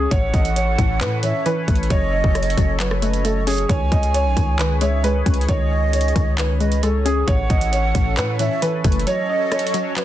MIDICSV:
0, 0, Header, 1, 7, 480
1, 0, Start_track
1, 0, Key_signature, 4, "minor"
1, 0, Tempo, 447761
1, 121, Time_signature, 4, 2, 24, 8
1, 10769, End_track
2, 0, Start_track
2, 0, Title_t, "Flute"
2, 0, Program_c, 0, 73
2, 120, Note_on_c, 0, 78, 103
2, 1277, Note_off_c, 0, 78, 0
2, 1324, Note_on_c, 0, 76, 102
2, 1551, Note_off_c, 0, 76, 0
2, 2043, Note_on_c, 0, 75, 116
2, 2959, Note_off_c, 0, 75, 0
2, 3003, Note_on_c, 0, 73, 83
2, 3230, Note_off_c, 0, 73, 0
2, 3240, Note_on_c, 0, 75, 87
2, 3692, Note_off_c, 0, 75, 0
2, 3722, Note_on_c, 0, 73, 85
2, 3949, Note_off_c, 0, 73, 0
2, 3959, Note_on_c, 0, 80, 101
2, 5117, Note_off_c, 0, 80, 0
2, 5160, Note_on_c, 0, 76, 89
2, 5388, Note_off_c, 0, 76, 0
2, 5883, Note_on_c, 0, 75, 98
2, 6799, Note_off_c, 0, 75, 0
2, 6842, Note_on_c, 0, 73, 90
2, 7069, Note_off_c, 0, 73, 0
2, 7077, Note_on_c, 0, 75, 81
2, 7307, Note_off_c, 0, 75, 0
2, 7799, Note_on_c, 0, 78, 103
2, 8957, Note_off_c, 0, 78, 0
2, 9003, Note_on_c, 0, 76, 101
2, 9230, Note_off_c, 0, 76, 0
2, 9723, Note_on_c, 0, 75, 115
2, 10639, Note_off_c, 0, 75, 0
2, 10683, Note_on_c, 0, 73, 83
2, 10769, Note_off_c, 0, 73, 0
2, 10769, End_track
3, 0, Start_track
3, 0, Title_t, "Felt piano"
3, 0, Program_c, 1, 0
3, 121, Note_on_c, 1, 73, 113
3, 346, Note_off_c, 1, 73, 0
3, 362, Note_on_c, 1, 75, 81
3, 586, Note_off_c, 1, 75, 0
3, 601, Note_on_c, 1, 73, 86
3, 1052, Note_off_c, 1, 73, 0
3, 1081, Note_on_c, 1, 71, 99
3, 1306, Note_off_c, 1, 71, 0
3, 1320, Note_on_c, 1, 73, 82
3, 1545, Note_off_c, 1, 73, 0
3, 1562, Note_on_c, 1, 71, 91
3, 2012, Note_off_c, 1, 71, 0
3, 2041, Note_on_c, 1, 73, 107
3, 2266, Note_off_c, 1, 73, 0
3, 2282, Note_on_c, 1, 75, 75
3, 2506, Note_off_c, 1, 75, 0
3, 2522, Note_on_c, 1, 73, 80
3, 2973, Note_off_c, 1, 73, 0
3, 3000, Note_on_c, 1, 71, 78
3, 3451, Note_off_c, 1, 71, 0
3, 3481, Note_on_c, 1, 69, 77
3, 3706, Note_off_c, 1, 69, 0
3, 3722, Note_on_c, 1, 68, 91
3, 3946, Note_off_c, 1, 68, 0
3, 3959, Note_on_c, 1, 73, 106
3, 4185, Note_off_c, 1, 73, 0
3, 4200, Note_on_c, 1, 75, 81
3, 4425, Note_off_c, 1, 75, 0
3, 4442, Note_on_c, 1, 73, 97
3, 4892, Note_off_c, 1, 73, 0
3, 4919, Note_on_c, 1, 71, 89
3, 5145, Note_off_c, 1, 71, 0
3, 5159, Note_on_c, 1, 73, 90
3, 5385, Note_off_c, 1, 73, 0
3, 5402, Note_on_c, 1, 71, 87
3, 5852, Note_off_c, 1, 71, 0
3, 5881, Note_on_c, 1, 73, 103
3, 6106, Note_off_c, 1, 73, 0
3, 6124, Note_on_c, 1, 75, 67
3, 6347, Note_off_c, 1, 75, 0
3, 6363, Note_on_c, 1, 73, 75
3, 6813, Note_off_c, 1, 73, 0
3, 6842, Note_on_c, 1, 71, 80
3, 7293, Note_off_c, 1, 71, 0
3, 7322, Note_on_c, 1, 69, 72
3, 7546, Note_off_c, 1, 69, 0
3, 7561, Note_on_c, 1, 68, 86
3, 7786, Note_off_c, 1, 68, 0
3, 7801, Note_on_c, 1, 73, 110
3, 8026, Note_off_c, 1, 73, 0
3, 8043, Note_on_c, 1, 75, 82
3, 8267, Note_off_c, 1, 75, 0
3, 8281, Note_on_c, 1, 73, 85
3, 8732, Note_off_c, 1, 73, 0
3, 8760, Note_on_c, 1, 71, 97
3, 8985, Note_off_c, 1, 71, 0
3, 9001, Note_on_c, 1, 73, 82
3, 9226, Note_off_c, 1, 73, 0
3, 9242, Note_on_c, 1, 71, 88
3, 9693, Note_off_c, 1, 71, 0
3, 9723, Note_on_c, 1, 73, 107
3, 9947, Note_off_c, 1, 73, 0
3, 9962, Note_on_c, 1, 75, 73
3, 10186, Note_off_c, 1, 75, 0
3, 10204, Note_on_c, 1, 73, 80
3, 10654, Note_off_c, 1, 73, 0
3, 10682, Note_on_c, 1, 71, 81
3, 10769, Note_off_c, 1, 71, 0
3, 10769, End_track
4, 0, Start_track
4, 0, Title_t, "Analog synth pad"
4, 0, Program_c, 2, 89
4, 0, Note_on_c, 2, 61, 75
4, 0, Note_on_c, 2, 73, 91
4, 123, Note_on_c, 2, 52, 82
4, 123, Note_on_c, 2, 69, 76
4, 2022, Note_off_c, 2, 52, 0
4, 2023, Note_off_c, 2, 69, 0
4, 2040, Note_on_c, 2, 54, 81
4, 2040, Note_on_c, 2, 69, 74
4, 3941, Note_off_c, 2, 54, 0
4, 3941, Note_off_c, 2, 69, 0
4, 3962, Note_on_c, 2, 51, 81
4, 3963, Note_on_c, 2, 68, 74
4, 7757, Note_off_c, 2, 61, 0
4, 7758, Note_off_c, 2, 73, 0
4, 7763, Note_off_c, 2, 51, 0
4, 7763, Note_off_c, 2, 68, 0
4, 7800, Note_on_c, 2, 69, 74
4, 7801, Note_on_c, 2, 52, 81
4, 7801, Note_on_c, 2, 61, 77
4, 7801, Note_on_c, 2, 73, 89
4, 9701, Note_off_c, 2, 61, 0
4, 9701, Note_off_c, 2, 69, 0
4, 9702, Note_off_c, 2, 52, 0
4, 9702, Note_off_c, 2, 73, 0
4, 9722, Note_on_c, 2, 54, 79
4, 9722, Note_on_c, 2, 61, 76
4, 9722, Note_on_c, 2, 73, 91
4, 9723, Note_on_c, 2, 69, 77
4, 10769, Note_off_c, 2, 54, 0
4, 10769, Note_off_c, 2, 61, 0
4, 10769, Note_off_c, 2, 69, 0
4, 10769, Note_off_c, 2, 73, 0
4, 10769, End_track
5, 0, Start_track
5, 0, Title_t, "Synth pluck"
5, 0, Program_c, 3, 84
5, 0, Note_on_c, 3, 51, 77
5, 0, Note_on_c, 3, 56, 93
5, 0, Note_on_c, 3, 61, 77
5, 120, Note_off_c, 3, 51, 0
5, 121, Note_on_c, 3, 45, 82
5, 122, Note_off_c, 3, 61, 0
5, 123, Note_off_c, 3, 56, 0
5, 828, Note_off_c, 3, 45, 0
5, 841, Note_on_c, 3, 45, 89
5, 1065, Note_off_c, 3, 45, 0
5, 1077, Note_on_c, 3, 45, 76
5, 1323, Note_on_c, 3, 52, 77
5, 1551, Note_off_c, 3, 52, 0
5, 1564, Note_on_c, 3, 52, 102
5, 1802, Note_on_c, 3, 57, 71
5, 2038, Note_on_c, 3, 54, 89
5, 2039, Note_off_c, 3, 45, 0
5, 2042, Note_off_c, 3, 52, 0
5, 2042, Note_off_c, 3, 57, 0
5, 2750, Note_off_c, 3, 54, 0
5, 2762, Note_on_c, 3, 54, 92
5, 2984, Note_off_c, 3, 54, 0
5, 2997, Note_on_c, 3, 54, 78
5, 3241, Note_on_c, 3, 57, 82
5, 3467, Note_off_c, 3, 57, 0
5, 3480, Note_on_c, 3, 57, 90
5, 3718, Note_on_c, 3, 61, 74
5, 3955, Note_on_c, 3, 51, 92
5, 3959, Note_off_c, 3, 54, 0
5, 3959, Note_off_c, 3, 61, 0
5, 3960, Note_off_c, 3, 57, 0
5, 4667, Note_off_c, 3, 51, 0
5, 4680, Note_on_c, 3, 51, 86
5, 4908, Note_off_c, 3, 51, 0
5, 4921, Note_on_c, 3, 51, 72
5, 5161, Note_on_c, 3, 56, 85
5, 5386, Note_off_c, 3, 56, 0
5, 5399, Note_on_c, 3, 56, 89
5, 5636, Note_on_c, 3, 61, 73
5, 5866, Note_off_c, 3, 51, 0
5, 5879, Note_on_c, 3, 51, 91
5, 6586, Note_off_c, 3, 51, 0
5, 6599, Note_on_c, 3, 51, 86
5, 6600, Note_off_c, 3, 56, 0
5, 6825, Note_off_c, 3, 51, 0
5, 6838, Note_off_c, 3, 61, 0
5, 6838, Note_on_c, 3, 51, 74
5, 7081, Note_on_c, 3, 56, 80
5, 7311, Note_off_c, 3, 56, 0
5, 7324, Note_on_c, 3, 56, 93
5, 7563, Note_on_c, 3, 61, 81
5, 7799, Note_off_c, 3, 51, 0
5, 7800, Note_on_c, 3, 45, 84
5, 7802, Note_off_c, 3, 56, 0
5, 7802, Note_off_c, 3, 61, 0
5, 8507, Note_off_c, 3, 45, 0
5, 8520, Note_on_c, 3, 45, 91
5, 8745, Note_off_c, 3, 45, 0
5, 8758, Note_on_c, 3, 45, 74
5, 9001, Note_on_c, 3, 52, 76
5, 9231, Note_off_c, 3, 52, 0
5, 9244, Note_on_c, 3, 52, 97
5, 9484, Note_on_c, 3, 57, 77
5, 9719, Note_off_c, 3, 45, 0
5, 9720, Note_on_c, 3, 54, 92
5, 9722, Note_off_c, 3, 52, 0
5, 9722, Note_off_c, 3, 57, 0
5, 10431, Note_off_c, 3, 54, 0
5, 10444, Note_on_c, 3, 54, 95
5, 10667, Note_off_c, 3, 54, 0
5, 10680, Note_on_c, 3, 54, 76
5, 10769, Note_off_c, 3, 54, 0
5, 10769, End_track
6, 0, Start_track
6, 0, Title_t, "808-style bass"
6, 0, Program_c, 4, 38
6, 122, Note_on_c, 4, 33, 121
6, 352, Note_off_c, 4, 33, 0
6, 360, Note_on_c, 4, 33, 108
6, 821, Note_off_c, 4, 33, 0
6, 841, Note_on_c, 4, 33, 107
6, 1081, Note_on_c, 4, 45, 98
6, 1097, Note_off_c, 4, 33, 0
6, 1423, Note_off_c, 4, 45, 0
6, 1800, Note_on_c, 4, 33, 104
6, 2031, Note_off_c, 4, 33, 0
6, 2041, Note_on_c, 4, 30, 116
6, 2387, Note_off_c, 4, 30, 0
6, 2401, Note_on_c, 4, 30, 104
6, 2746, Note_off_c, 4, 30, 0
6, 2760, Note_on_c, 4, 30, 108
6, 3918, Note_off_c, 4, 30, 0
6, 3961, Note_on_c, 4, 37, 120
6, 4191, Note_off_c, 4, 37, 0
6, 4200, Note_on_c, 4, 37, 107
6, 4561, Note_on_c, 4, 35, 104
6, 4577, Note_off_c, 4, 37, 0
6, 4675, Note_off_c, 4, 35, 0
6, 4680, Note_on_c, 4, 37, 109
6, 5602, Note_off_c, 4, 37, 0
6, 5640, Note_on_c, 4, 37, 106
6, 5871, Note_off_c, 4, 37, 0
6, 5880, Note_on_c, 4, 37, 117
6, 6572, Note_off_c, 4, 37, 0
6, 6600, Note_on_c, 4, 37, 108
6, 7758, Note_off_c, 4, 37, 0
6, 7800, Note_on_c, 4, 33, 116
6, 8031, Note_off_c, 4, 33, 0
6, 8039, Note_on_c, 4, 33, 110
6, 8501, Note_off_c, 4, 33, 0
6, 8521, Note_on_c, 4, 33, 112
6, 8761, Note_on_c, 4, 45, 98
6, 8777, Note_off_c, 4, 33, 0
6, 9103, Note_off_c, 4, 45, 0
6, 9482, Note_on_c, 4, 30, 106
6, 9712, Note_off_c, 4, 30, 0
6, 10769, End_track
7, 0, Start_track
7, 0, Title_t, "Drums"
7, 121, Note_on_c, 9, 36, 117
7, 122, Note_on_c, 9, 42, 89
7, 229, Note_off_c, 9, 36, 0
7, 229, Note_off_c, 9, 42, 0
7, 361, Note_on_c, 9, 36, 107
7, 362, Note_on_c, 9, 42, 65
7, 468, Note_off_c, 9, 36, 0
7, 469, Note_off_c, 9, 42, 0
7, 482, Note_on_c, 9, 42, 64
7, 589, Note_off_c, 9, 42, 0
7, 604, Note_on_c, 9, 42, 80
7, 711, Note_off_c, 9, 42, 0
7, 842, Note_on_c, 9, 36, 91
7, 842, Note_on_c, 9, 42, 83
7, 949, Note_off_c, 9, 36, 0
7, 949, Note_off_c, 9, 42, 0
7, 1083, Note_on_c, 9, 39, 108
7, 1086, Note_on_c, 9, 42, 84
7, 1190, Note_off_c, 9, 39, 0
7, 1193, Note_off_c, 9, 42, 0
7, 1317, Note_on_c, 9, 42, 82
7, 1425, Note_off_c, 9, 42, 0
7, 1563, Note_on_c, 9, 42, 80
7, 1670, Note_off_c, 9, 42, 0
7, 1801, Note_on_c, 9, 36, 104
7, 1801, Note_on_c, 9, 42, 69
7, 1881, Note_off_c, 9, 42, 0
7, 1881, Note_on_c, 9, 42, 56
7, 1908, Note_off_c, 9, 36, 0
7, 1961, Note_off_c, 9, 42, 0
7, 1961, Note_on_c, 9, 42, 41
7, 2041, Note_off_c, 9, 42, 0
7, 2041, Note_on_c, 9, 36, 116
7, 2041, Note_on_c, 9, 42, 88
7, 2148, Note_off_c, 9, 36, 0
7, 2149, Note_off_c, 9, 42, 0
7, 2401, Note_on_c, 9, 36, 94
7, 2508, Note_off_c, 9, 36, 0
7, 2520, Note_on_c, 9, 37, 81
7, 2521, Note_on_c, 9, 42, 77
7, 2600, Note_off_c, 9, 42, 0
7, 2600, Note_on_c, 9, 42, 62
7, 2628, Note_off_c, 9, 37, 0
7, 2681, Note_off_c, 9, 42, 0
7, 2681, Note_on_c, 9, 42, 45
7, 2761, Note_off_c, 9, 42, 0
7, 2761, Note_on_c, 9, 36, 90
7, 2761, Note_on_c, 9, 42, 82
7, 2868, Note_off_c, 9, 36, 0
7, 2868, Note_off_c, 9, 42, 0
7, 3001, Note_on_c, 9, 39, 111
7, 3005, Note_on_c, 9, 42, 87
7, 3108, Note_off_c, 9, 39, 0
7, 3112, Note_off_c, 9, 42, 0
7, 3121, Note_on_c, 9, 37, 100
7, 3229, Note_off_c, 9, 37, 0
7, 3241, Note_on_c, 9, 42, 75
7, 3348, Note_off_c, 9, 42, 0
7, 3360, Note_on_c, 9, 42, 45
7, 3468, Note_off_c, 9, 42, 0
7, 3482, Note_on_c, 9, 42, 81
7, 3589, Note_off_c, 9, 42, 0
7, 3721, Note_on_c, 9, 42, 71
7, 3726, Note_on_c, 9, 46, 75
7, 3828, Note_off_c, 9, 42, 0
7, 3833, Note_off_c, 9, 46, 0
7, 3841, Note_on_c, 9, 42, 41
7, 3948, Note_off_c, 9, 42, 0
7, 3961, Note_on_c, 9, 36, 114
7, 3961, Note_on_c, 9, 42, 84
7, 4068, Note_off_c, 9, 36, 0
7, 4068, Note_off_c, 9, 42, 0
7, 4200, Note_on_c, 9, 36, 105
7, 4201, Note_on_c, 9, 42, 63
7, 4307, Note_off_c, 9, 36, 0
7, 4308, Note_off_c, 9, 42, 0
7, 4321, Note_on_c, 9, 42, 63
7, 4428, Note_off_c, 9, 42, 0
7, 4443, Note_on_c, 9, 42, 79
7, 4550, Note_off_c, 9, 42, 0
7, 4681, Note_on_c, 9, 36, 95
7, 4682, Note_on_c, 9, 42, 83
7, 4788, Note_off_c, 9, 36, 0
7, 4789, Note_off_c, 9, 42, 0
7, 4922, Note_on_c, 9, 39, 108
7, 4926, Note_on_c, 9, 42, 88
7, 5029, Note_off_c, 9, 39, 0
7, 5033, Note_off_c, 9, 42, 0
7, 5157, Note_on_c, 9, 42, 82
7, 5264, Note_off_c, 9, 42, 0
7, 5403, Note_on_c, 9, 42, 81
7, 5510, Note_off_c, 9, 42, 0
7, 5640, Note_on_c, 9, 36, 98
7, 5641, Note_on_c, 9, 42, 69
7, 5721, Note_off_c, 9, 42, 0
7, 5721, Note_on_c, 9, 42, 54
7, 5748, Note_off_c, 9, 36, 0
7, 5802, Note_off_c, 9, 42, 0
7, 5802, Note_on_c, 9, 42, 41
7, 5880, Note_off_c, 9, 42, 0
7, 5880, Note_on_c, 9, 36, 114
7, 5880, Note_on_c, 9, 42, 88
7, 5987, Note_off_c, 9, 42, 0
7, 5988, Note_off_c, 9, 36, 0
7, 6360, Note_on_c, 9, 42, 77
7, 6441, Note_off_c, 9, 42, 0
7, 6441, Note_on_c, 9, 42, 64
7, 6520, Note_off_c, 9, 42, 0
7, 6520, Note_on_c, 9, 42, 46
7, 6600, Note_on_c, 9, 36, 92
7, 6601, Note_off_c, 9, 42, 0
7, 6601, Note_on_c, 9, 42, 84
7, 6708, Note_off_c, 9, 36, 0
7, 6708, Note_off_c, 9, 42, 0
7, 6842, Note_on_c, 9, 39, 108
7, 6845, Note_on_c, 9, 42, 89
7, 6949, Note_off_c, 9, 39, 0
7, 6952, Note_off_c, 9, 42, 0
7, 7080, Note_on_c, 9, 42, 45
7, 7188, Note_off_c, 9, 42, 0
7, 7200, Note_on_c, 9, 42, 76
7, 7307, Note_off_c, 9, 42, 0
7, 7322, Note_on_c, 9, 42, 82
7, 7429, Note_off_c, 9, 42, 0
7, 7565, Note_on_c, 9, 42, 72
7, 7673, Note_off_c, 9, 42, 0
7, 7800, Note_on_c, 9, 36, 114
7, 7800, Note_on_c, 9, 42, 85
7, 7908, Note_off_c, 9, 36, 0
7, 7908, Note_off_c, 9, 42, 0
7, 8040, Note_on_c, 9, 36, 102
7, 8041, Note_on_c, 9, 42, 62
7, 8147, Note_off_c, 9, 36, 0
7, 8148, Note_off_c, 9, 42, 0
7, 8161, Note_on_c, 9, 42, 64
7, 8269, Note_off_c, 9, 42, 0
7, 8284, Note_on_c, 9, 42, 75
7, 8391, Note_off_c, 9, 42, 0
7, 8521, Note_on_c, 9, 36, 94
7, 8522, Note_on_c, 9, 42, 83
7, 8628, Note_off_c, 9, 36, 0
7, 8629, Note_off_c, 9, 42, 0
7, 8762, Note_on_c, 9, 39, 109
7, 8766, Note_on_c, 9, 42, 86
7, 8869, Note_off_c, 9, 39, 0
7, 8873, Note_off_c, 9, 42, 0
7, 8998, Note_on_c, 9, 42, 80
7, 9105, Note_off_c, 9, 42, 0
7, 9243, Note_on_c, 9, 42, 81
7, 9351, Note_off_c, 9, 42, 0
7, 9481, Note_on_c, 9, 36, 100
7, 9482, Note_on_c, 9, 42, 70
7, 9562, Note_off_c, 9, 42, 0
7, 9562, Note_on_c, 9, 42, 55
7, 9588, Note_off_c, 9, 36, 0
7, 9642, Note_off_c, 9, 42, 0
7, 9642, Note_on_c, 9, 42, 43
7, 9722, Note_off_c, 9, 42, 0
7, 9722, Note_on_c, 9, 42, 84
7, 9829, Note_off_c, 9, 42, 0
7, 10201, Note_on_c, 9, 37, 78
7, 10202, Note_on_c, 9, 42, 78
7, 10281, Note_off_c, 9, 42, 0
7, 10281, Note_on_c, 9, 42, 63
7, 10309, Note_off_c, 9, 37, 0
7, 10362, Note_off_c, 9, 42, 0
7, 10362, Note_on_c, 9, 42, 48
7, 10442, Note_off_c, 9, 42, 0
7, 10442, Note_on_c, 9, 42, 86
7, 10550, Note_off_c, 9, 42, 0
7, 10683, Note_on_c, 9, 39, 109
7, 10687, Note_on_c, 9, 42, 84
7, 10769, Note_off_c, 9, 39, 0
7, 10769, Note_off_c, 9, 42, 0
7, 10769, End_track
0, 0, End_of_file